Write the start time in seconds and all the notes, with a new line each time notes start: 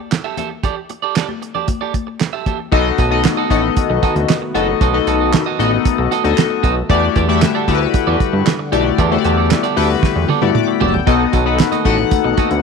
0.11 muted clean electric guitar stroke, snare, clap, closed hi-hat
0.24 G4 A4 E5
0.37 G4 A4 E5, closed hi-hat, muted conga, high conga, low conga
0.50 muted clean electric guitar stroke
0.63 G4 A4 D5, kick, closed hi-hat, muted conga, low conga
0.77 muted clean electric guitar stroke
0.89 muted clean electric guitar stroke, closed hi-hat, muted conga
1.02 G4 A4 D5
1.16 G4 A4 D5, snare, clap, closed hi-hat, muted conga
1.29 muted clean electric guitar stroke, high conga
1.42 muted clean electric guitar stroke, closed hi-hat
1.55 G4 A4 D5, low conga
1.68 muted clean electric guitar stroke, kick, closed hi-hat, muted conga, high conga
1.81 G4 A4 D5
1.94 muted clean electric guitar stroke, kick, closed hi-hat, high conga
2.07 muted clean electric guitar stroke
2.20 muted clean electric guitar stroke, snare, clap, closed hi-hat, muted conga
2.33 G4 A4 E5
2.46 G4 A4 E5, kick, closed hi-hat, muted conga, high conga, low conga
2.59 muted clean electric guitar stroke
2.72 B1 D#3 A3 B3 D#4 F#4 A4 D#5, kick, crash
2.98 B1 F#4 A4 D#5, kick, closed hi-hat
3.11 B3 D#4 F#4 A4 D#5
3.24 snare, clap, closed hi-hat
3.37 F#4 A4 D#5
3.50 A1 B3 D#4 F#4 A4 D#5, kick, closed hi-hat
3.64 muted clean electric guitar stroke
3.77 muted clean electric guitar stroke, kick, closed hi-hat
3.90 B1, muted clean electric guitar stroke
4.03 F#4 A4 D#5, kick, closed hi-hat
4.16 D2, muted clean electric guitar stroke, closed hi-hat
4.29 snare, clap, closed hi-hat
4.42 muted clean electric guitar stroke
4.54 F#1 B3 D#4 F#4 A4 D#5, closed hi-hat
4.68 muted clean electric guitar stroke
4.81 B1 F#4 A4 D#5, kick, closed hi-hat
4.93 B3 D#4 F#4 A4 D#5
5.07 B1 F#4 A4 D#5, closed hi-hat
5.20 F#4 A4 D#5
5.33 muted clean electric guitar stroke, snare, clap, closed hi-hat
5.46 F#4 A4 D#5
5.59 A1 B3 D#4 F#4 A4 D#5, closed hi-hat
5.72 muted clean electric guitar stroke
5.85 muted clean electric guitar stroke, kick, closed hi-hat
5.98 B1, muted clean electric guitar stroke
6.11 F#4 A4 D#5, closed hi-hat
6.24 D2 B3 D#4 F#4 A4 D#5, muted clean electric guitar stroke, closed hi-hat
6.37 snare, clap, closed hi-hat
6.50 muted clean electric guitar stroke
6.63 B1 F#4 A4 D#5, kick, closed hi-hat
6.76 muted clean electric guitar stroke
6.89 E2 D3 G3 A3 E4 F#4 G4 A4 D5 F#5, kick, closed hi-hat
7.16 E2 G4 A4 D5, kick, closed hi-hat
7.28 A3 E4 F#4 G4 A4 D5 E5
7.42 snare, clap, closed hi-hat
7.55 G4 A4 D5
7.67 D2 A3 E4 F#4 G4 A4 D5, kick, closed hi-hat
7.74 B4
7.81 muted clean electric guitar stroke
7.94 muted clean electric guitar stroke, kick, closed hi-hat
8.07 E2 G4 A4 D5
8.20 muted clean electric guitar stroke, kick, closed hi-hat
8.33 G2, muted clean electric guitar stroke
8.46 snare, clap, closed hi-hat
8.59 muted clean electric guitar stroke
8.72 B1 A3 E4 F#4 G4 A4 D5, closed hi-hat
8.85 muted clean electric guitar stroke
8.98 E2 B3 G4 A4 D5, kick, closed hi-hat
9.11 A3 E4 F#4 G4 C5
9.18 D5
9.24 E2 G4 A4 D5, closed hi-hat
9.37 G4 A4 D5
9.51 muted clean electric guitar stroke, snare, clap, closed hi-hat
9.63 G4 A4 D5, closed hi-hat
9.76 D2 A3 E4 F#4 G4 A4 B4 D5, open hi-hat
9.90 muted clean electric guitar stroke
10.03 muted clean electric guitar stroke, kick, snare
10.16 E2, muted clean electric guitar stroke
10.29 G4 A4 D5, high tom
10.41 G2 A3 E4 F#4 G4 D5, muted clean electric guitar stroke, high tom
10.55 D6, mid tom
10.68 B5, muted clean electric guitar stroke
10.80 F#1 G4 A4 D5 A5, floor tom
10.94 G5, muted clean electric guitar stroke, floor tom
11.06 B1 D#3 A3 B3 D#4 F#4 A4 D#5, kick, closed hi-hat
11.33 B1 F#4 A4 D#5, kick, closed hi-hat
11.46 B3 D#4 F#4 A4 B4 D#5
11.59 snare, clap, closed hi-hat, muted conga
11.72 F#4 A4 D#5, closed hi-hat, high conga
11.85 A1 B3 D#4 F#4 A4 D#5 F#5, kick, closed hi-hat, muted conga
11.98 muted clean electric guitar stroke, low conga
12.11 muted clean electric guitar stroke, kick, closed hi-hat, muted conga, high conga
12.24 B1, muted clean electric guitar stroke
12.37 F#4 A4 D#5, kick, closed hi-hat, muted conga, high conga
12.51 D2, muted clean electric guitar stroke, closed hi-hat